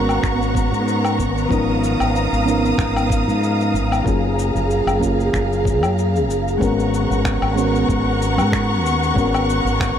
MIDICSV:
0, 0, Header, 1, 6, 480
1, 0, Start_track
1, 0, Tempo, 638298
1, 1131, Time_signature, 4, 2, 24, 8
1, 7511, End_track
2, 0, Start_track
2, 0, Title_t, "Synth texture"
2, 0, Program_c, 0, 99
2, 0, Note_on_c, 0, 82, 82
2, 0, Note_on_c, 0, 94, 76
2, 4983, Note_off_c, 0, 94, 0
2, 4984, Note_off_c, 0, 82, 0
2, 7511, End_track
3, 0, Start_track
3, 0, Title_t, "String section"
3, 0, Program_c, 1, 48
3, 0, Note_on_c, 1, 59, 76
3, 0, Note_on_c, 1, 78, 72
3, 0, Note_on_c, 1, 82, 84
3, 0, Note_on_c, 1, 85, 89
3, 1097, Note_off_c, 1, 78, 0
3, 1097, Note_off_c, 1, 85, 0
3, 1130, Note_on_c, 1, 77, 72
3, 1130, Note_on_c, 1, 87, 89
3, 3017, Note_off_c, 1, 59, 0
3, 3031, Note_off_c, 1, 77, 0
3, 3031, Note_off_c, 1, 87, 0
3, 3049, Note_on_c, 1, 68, 80
3, 3050, Note_on_c, 1, 77, 75
3, 4939, Note_off_c, 1, 82, 0
3, 4951, Note_off_c, 1, 68, 0
3, 4952, Note_off_c, 1, 77, 0
3, 4965, Note_on_c, 1, 59, 77
3, 4965, Note_on_c, 1, 82, 73
3, 4967, Note_on_c, 1, 78, 76
3, 4967, Note_on_c, 1, 85, 91
3, 7511, Note_off_c, 1, 59, 0
3, 7511, Note_off_c, 1, 78, 0
3, 7511, Note_off_c, 1, 82, 0
3, 7511, Note_off_c, 1, 85, 0
3, 7511, End_track
4, 0, Start_track
4, 0, Title_t, "Synth keys"
4, 0, Program_c, 2, 88
4, 0, Control_c, 2, 64, 127
4, 0, Note_on_c, 2, 56, 77
4, 0, Note_on_c, 2, 59, 70
4, 0, Note_on_c, 2, 61, 69
4, 0, Note_on_c, 2, 66, 72
4, 0, Note_on_c, 2, 70, 87
4, 1098, Note_off_c, 2, 56, 0
4, 1102, Note_off_c, 2, 59, 0
4, 1107, Note_off_c, 2, 61, 0
4, 1112, Note_off_c, 2, 66, 0
4, 1116, Note_off_c, 2, 70, 0
4, 1116, Note_on_c, 2, 53, 81
4, 1127, Note_on_c, 2, 59, 75
4, 1135, Note_on_c, 2, 61, 72
4, 1142, Control_c, 2, 64, 0
4, 1145, Note_on_c, 2, 63, 72
4, 1153, Note_on_c, 2, 70, 87
4, 1252, Control_c, 2, 64, 127
4, 1818, Note_off_c, 2, 53, 0
4, 1823, Note_off_c, 2, 59, 0
4, 1827, Note_off_c, 2, 61, 0
4, 1832, Note_off_c, 2, 63, 0
4, 1836, Note_off_c, 2, 70, 0
4, 1836, Note_on_c, 2, 53, 73
4, 1844, Note_on_c, 2, 59, 70
4, 1852, Note_on_c, 2, 61, 73
4, 1864, Note_on_c, 2, 63, 72
4, 1874, Note_on_c, 2, 70, 83
4, 3018, Note_off_c, 2, 53, 0
4, 3021, Note_off_c, 2, 59, 0
4, 3026, Note_off_c, 2, 61, 0
4, 3031, Note_off_c, 2, 63, 0
4, 3036, Note_on_c, 2, 54, 81
4, 3037, Note_off_c, 2, 70, 0
4, 3043, Note_on_c, 2, 58, 71
4, 3053, Note_on_c, 2, 61, 70
4, 3061, Control_c, 2, 64, 0
4, 3063, Note_on_c, 2, 65, 72
4, 3073, Note_on_c, 2, 68, 90
4, 3208, Control_c, 2, 64, 127
4, 3738, Note_off_c, 2, 54, 0
4, 3741, Note_off_c, 2, 58, 0
4, 3746, Note_off_c, 2, 61, 0
4, 3751, Note_off_c, 2, 65, 0
4, 3752, Note_on_c, 2, 54, 79
4, 3756, Note_off_c, 2, 68, 0
4, 3761, Note_on_c, 2, 58, 74
4, 3768, Note_on_c, 2, 61, 67
4, 3781, Note_on_c, 2, 65, 73
4, 3791, Note_on_c, 2, 68, 84
4, 4935, Note_off_c, 2, 54, 0
4, 4940, Note_off_c, 2, 58, 0
4, 4944, Note_off_c, 2, 61, 0
4, 4949, Note_on_c, 2, 56, 85
4, 4950, Note_off_c, 2, 65, 0
4, 4955, Note_off_c, 2, 68, 0
4, 4962, Note_on_c, 2, 59, 70
4, 4969, Note_on_c, 2, 61, 72
4, 4980, Note_on_c, 2, 66, 77
4, 4981, Control_c, 2, 64, 0
4, 4990, Note_on_c, 2, 70, 89
4, 5102, Control_c, 2, 64, 127
4, 5654, Note_off_c, 2, 56, 0
4, 5660, Note_off_c, 2, 59, 0
4, 5664, Note_off_c, 2, 61, 0
4, 5669, Note_off_c, 2, 66, 0
4, 5675, Note_off_c, 2, 70, 0
4, 5675, Note_on_c, 2, 56, 82
4, 5682, Note_on_c, 2, 59, 72
4, 5692, Note_on_c, 2, 61, 70
4, 5703, Note_on_c, 2, 66, 72
4, 5712, Note_on_c, 2, 70, 84
4, 6857, Note_off_c, 2, 56, 0
4, 6861, Note_off_c, 2, 59, 0
4, 6865, Note_off_c, 2, 61, 0
4, 6871, Note_off_c, 2, 66, 0
4, 6874, Note_on_c, 2, 56, 76
4, 6875, Note_off_c, 2, 70, 0
4, 6884, Note_on_c, 2, 59, 76
4, 6892, Note_on_c, 2, 61, 74
4, 6902, Note_on_c, 2, 66, 77
4, 6912, Note_on_c, 2, 70, 89
4, 7511, Note_off_c, 2, 56, 0
4, 7511, Note_off_c, 2, 59, 0
4, 7511, Note_off_c, 2, 61, 0
4, 7511, Note_off_c, 2, 66, 0
4, 7511, Note_off_c, 2, 70, 0
4, 7511, End_track
5, 0, Start_track
5, 0, Title_t, "Fretless electric bass"
5, 0, Program_c, 3, 35
5, 0, Note_on_c, 3, 32, 87
5, 143, Note_off_c, 3, 32, 0
5, 172, Note_on_c, 3, 32, 84
5, 541, Note_on_c, 3, 44, 85
5, 552, Note_off_c, 3, 32, 0
5, 892, Note_on_c, 3, 32, 81
5, 903, Note_off_c, 3, 44, 0
5, 1097, Note_off_c, 3, 32, 0
5, 1132, Note_on_c, 3, 32, 97
5, 1470, Note_off_c, 3, 32, 0
5, 1506, Note_on_c, 3, 32, 89
5, 1703, Note_off_c, 3, 32, 0
5, 1749, Note_on_c, 3, 32, 93
5, 2067, Note_off_c, 3, 32, 0
5, 2089, Note_on_c, 3, 32, 85
5, 2464, Note_on_c, 3, 44, 86
5, 2476, Note_off_c, 3, 32, 0
5, 2812, Note_on_c, 3, 32, 86
5, 2823, Note_off_c, 3, 44, 0
5, 3017, Note_off_c, 3, 32, 0
5, 3050, Note_on_c, 3, 30, 100
5, 3389, Note_off_c, 3, 30, 0
5, 3423, Note_on_c, 3, 30, 89
5, 3621, Note_off_c, 3, 30, 0
5, 3659, Note_on_c, 3, 30, 90
5, 3982, Note_off_c, 3, 30, 0
5, 4012, Note_on_c, 3, 30, 86
5, 4379, Note_off_c, 3, 30, 0
5, 4379, Note_on_c, 3, 42, 93
5, 4730, Note_off_c, 3, 42, 0
5, 4730, Note_on_c, 3, 30, 88
5, 4936, Note_off_c, 3, 30, 0
5, 4972, Note_on_c, 3, 32, 103
5, 5310, Note_off_c, 3, 32, 0
5, 5343, Note_on_c, 3, 32, 89
5, 5541, Note_off_c, 3, 32, 0
5, 5579, Note_on_c, 3, 32, 97
5, 5902, Note_off_c, 3, 32, 0
5, 5929, Note_on_c, 3, 32, 91
5, 6300, Note_on_c, 3, 44, 93
5, 6311, Note_off_c, 3, 32, 0
5, 6643, Note_off_c, 3, 44, 0
5, 6643, Note_on_c, 3, 39, 87
5, 6853, Note_off_c, 3, 39, 0
5, 6887, Note_on_c, 3, 32, 99
5, 7227, Note_off_c, 3, 32, 0
5, 7254, Note_on_c, 3, 32, 89
5, 7457, Note_off_c, 3, 32, 0
5, 7511, End_track
6, 0, Start_track
6, 0, Title_t, "Drums"
6, 68, Note_on_c, 9, 77, 66
6, 75, Note_on_c, 9, 82, 28
6, 143, Note_off_c, 9, 77, 0
6, 150, Note_off_c, 9, 82, 0
6, 173, Note_on_c, 9, 36, 107
6, 177, Note_on_c, 9, 26, 70
6, 184, Note_on_c, 9, 82, 43
6, 249, Note_off_c, 9, 36, 0
6, 252, Note_off_c, 9, 26, 0
6, 259, Note_off_c, 9, 82, 0
6, 317, Note_on_c, 9, 82, 29
6, 392, Note_off_c, 9, 82, 0
6, 413, Note_on_c, 9, 36, 97
6, 425, Note_on_c, 9, 82, 73
6, 488, Note_off_c, 9, 36, 0
6, 500, Note_off_c, 9, 82, 0
6, 555, Note_on_c, 9, 82, 32
6, 630, Note_off_c, 9, 82, 0
6, 661, Note_on_c, 9, 82, 42
6, 737, Note_off_c, 9, 82, 0
6, 786, Note_on_c, 9, 77, 77
6, 793, Note_on_c, 9, 82, 30
6, 861, Note_off_c, 9, 77, 0
6, 868, Note_off_c, 9, 82, 0
6, 893, Note_on_c, 9, 36, 61
6, 899, Note_on_c, 9, 82, 70
6, 968, Note_off_c, 9, 36, 0
6, 975, Note_off_c, 9, 82, 0
6, 1036, Note_on_c, 9, 82, 30
6, 1111, Note_off_c, 9, 82, 0
6, 1133, Note_on_c, 9, 36, 93
6, 1140, Note_on_c, 9, 82, 43
6, 1208, Note_off_c, 9, 36, 0
6, 1216, Note_off_c, 9, 82, 0
6, 1382, Note_on_c, 9, 82, 77
6, 1457, Note_off_c, 9, 82, 0
6, 1506, Note_on_c, 9, 77, 76
6, 1513, Note_on_c, 9, 82, 29
6, 1581, Note_off_c, 9, 77, 0
6, 1588, Note_off_c, 9, 82, 0
6, 1623, Note_on_c, 9, 82, 41
6, 1698, Note_off_c, 9, 82, 0
6, 1755, Note_on_c, 9, 82, 28
6, 1830, Note_off_c, 9, 82, 0
6, 1865, Note_on_c, 9, 82, 69
6, 1940, Note_off_c, 9, 82, 0
6, 1996, Note_on_c, 9, 82, 29
6, 2071, Note_off_c, 9, 82, 0
6, 2092, Note_on_c, 9, 36, 112
6, 2096, Note_on_c, 9, 26, 77
6, 2103, Note_on_c, 9, 82, 40
6, 2167, Note_off_c, 9, 36, 0
6, 2171, Note_off_c, 9, 26, 0
6, 2178, Note_off_c, 9, 82, 0
6, 2229, Note_on_c, 9, 77, 75
6, 2236, Note_on_c, 9, 82, 29
6, 2305, Note_off_c, 9, 77, 0
6, 2311, Note_off_c, 9, 82, 0
6, 2332, Note_on_c, 9, 36, 95
6, 2344, Note_on_c, 9, 82, 71
6, 2407, Note_off_c, 9, 36, 0
6, 2419, Note_off_c, 9, 82, 0
6, 2475, Note_on_c, 9, 82, 30
6, 2550, Note_off_c, 9, 82, 0
6, 2582, Note_on_c, 9, 82, 38
6, 2657, Note_off_c, 9, 82, 0
6, 2713, Note_on_c, 9, 82, 27
6, 2788, Note_off_c, 9, 82, 0
6, 2823, Note_on_c, 9, 82, 69
6, 2899, Note_off_c, 9, 82, 0
6, 2949, Note_on_c, 9, 77, 77
6, 2956, Note_on_c, 9, 82, 29
6, 3024, Note_off_c, 9, 77, 0
6, 3031, Note_off_c, 9, 82, 0
6, 3051, Note_on_c, 9, 36, 102
6, 3061, Note_on_c, 9, 82, 38
6, 3127, Note_off_c, 9, 36, 0
6, 3136, Note_off_c, 9, 82, 0
6, 3301, Note_on_c, 9, 82, 74
6, 3376, Note_off_c, 9, 82, 0
6, 3429, Note_on_c, 9, 82, 31
6, 3504, Note_off_c, 9, 82, 0
6, 3538, Note_on_c, 9, 82, 39
6, 3613, Note_off_c, 9, 82, 0
6, 3665, Note_on_c, 9, 77, 81
6, 3672, Note_on_c, 9, 82, 30
6, 3740, Note_off_c, 9, 77, 0
6, 3747, Note_off_c, 9, 82, 0
6, 3772, Note_on_c, 9, 36, 56
6, 3781, Note_on_c, 9, 82, 71
6, 3847, Note_off_c, 9, 36, 0
6, 3856, Note_off_c, 9, 82, 0
6, 3913, Note_on_c, 9, 82, 29
6, 3988, Note_off_c, 9, 82, 0
6, 4012, Note_on_c, 9, 36, 104
6, 4014, Note_on_c, 9, 26, 78
6, 4021, Note_on_c, 9, 82, 41
6, 4087, Note_off_c, 9, 36, 0
6, 4090, Note_off_c, 9, 26, 0
6, 4097, Note_off_c, 9, 82, 0
6, 4155, Note_on_c, 9, 82, 29
6, 4231, Note_off_c, 9, 82, 0
6, 4251, Note_on_c, 9, 36, 94
6, 4263, Note_on_c, 9, 82, 71
6, 4326, Note_off_c, 9, 36, 0
6, 4338, Note_off_c, 9, 82, 0
6, 4383, Note_on_c, 9, 77, 81
6, 4390, Note_on_c, 9, 82, 30
6, 4459, Note_off_c, 9, 77, 0
6, 4466, Note_off_c, 9, 82, 0
6, 4501, Note_on_c, 9, 82, 41
6, 4577, Note_off_c, 9, 82, 0
6, 4631, Note_on_c, 9, 82, 29
6, 4706, Note_off_c, 9, 82, 0
6, 4739, Note_on_c, 9, 82, 69
6, 4815, Note_off_c, 9, 82, 0
6, 4872, Note_on_c, 9, 82, 31
6, 4947, Note_off_c, 9, 82, 0
6, 4972, Note_on_c, 9, 36, 93
6, 4979, Note_on_c, 9, 82, 46
6, 5047, Note_off_c, 9, 36, 0
6, 5054, Note_off_c, 9, 82, 0
6, 5111, Note_on_c, 9, 82, 32
6, 5186, Note_off_c, 9, 82, 0
6, 5220, Note_on_c, 9, 82, 79
6, 5295, Note_off_c, 9, 82, 0
6, 5352, Note_on_c, 9, 82, 32
6, 5427, Note_off_c, 9, 82, 0
6, 5451, Note_on_c, 9, 36, 100
6, 5453, Note_on_c, 9, 26, 100
6, 5460, Note_on_c, 9, 82, 42
6, 5526, Note_off_c, 9, 36, 0
6, 5528, Note_off_c, 9, 26, 0
6, 5535, Note_off_c, 9, 82, 0
6, 5581, Note_on_c, 9, 77, 78
6, 5656, Note_off_c, 9, 77, 0
6, 5698, Note_on_c, 9, 82, 77
6, 5773, Note_off_c, 9, 82, 0
6, 5831, Note_on_c, 9, 82, 30
6, 5906, Note_off_c, 9, 82, 0
6, 5931, Note_on_c, 9, 36, 98
6, 5938, Note_on_c, 9, 82, 45
6, 6006, Note_off_c, 9, 36, 0
6, 6013, Note_off_c, 9, 82, 0
6, 6181, Note_on_c, 9, 82, 75
6, 6256, Note_off_c, 9, 82, 0
6, 6304, Note_on_c, 9, 77, 80
6, 6311, Note_on_c, 9, 82, 33
6, 6380, Note_off_c, 9, 77, 0
6, 6387, Note_off_c, 9, 82, 0
6, 6410, Note_on_c, 9, 36, 104
6, 6416, Note_on_c, 9, 26, 110
6, 6423, Note_on_c, 9, 82, 47
6, 6486, Note_off_c, 9, 36, 0
6, 6492, Note_off_c, 9, 26, 0
6, 6498, Note_off_c, 9, 82, 0
6, 6662, Note_on_c, 9, 82, 78
6, 6737, Note_off_c, 9, 82, 0
6, 6791, Note_on_c, 9, 82, 33
6, 6866, Note_off_c, 9, 82, 0
6, 6890, Note_on_c, 9, 36, 100
6, 6902, Note_on_c, 9, 82, 46
6, 6966, Note_off_c, 9, 36, 0
6, 6978, Note_off_c, 9, 82, 0
6, 7027, Note_on_c, 9, 77, 78
6, 7034, Note_on_c, 9, 82, 31
6, 7102, Note_off_c, 9, 77, 0
6, 7109, Note_off_c, 9, 82, 0
6, 7141, Note_on_c, 9, 82, 80
6, 7216, Note_off_c, 9, 82, 0
6, 7272, Note_on_c, 9, 82, 35
6, 7347, Note_off_c, 9, 82, 0
6, 7371, Note_on_c, 9, 36, 116
6, 7375, Note_on_c, 9, 26, 105
6, 7382, Note_on_c, 9, 82, 46
6, 7446, Note_off_c, 9, 36, 0
6, 7451, Note_off_c, 9, 26, 0
6, 7458, Note_off_c, 9, 82, 0
6, 7511, End_track
0, 0, End_of_file